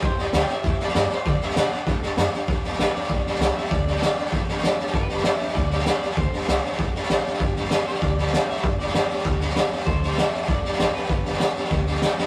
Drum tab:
HH |----p-------p---|----p-------p---|----p-------p---|----p-------p---|
SD |o-o-o-o-o-ooo-o-|o-ooo-o-o-o-o-o-|o-ooo-ooo-ooo-oo|o-ooo-ooo-ooo-oo|
BD |o-------o-------|o-------o-------|o-------o-------|o-------o-------|

HH |----p-------p---|----p-------p---|----p-------p---|----p-------p---|
SD |o-ooo-ooo-ooo-oo|o-ooo-ooo-ooo-oo|o-ooo-ooo-ooo-oo|o-ooo-ooo-ooo-oo|
BD |o-------o-------|o-------o-------|o-------o-------|o-------o-------|

HH |----p-------p---|----p-------p---|
SD |o-ooo-ooo-ooo-oo|o-ooo-ooo-ooo-o-|
BD |o-------o-------|o-------o-------|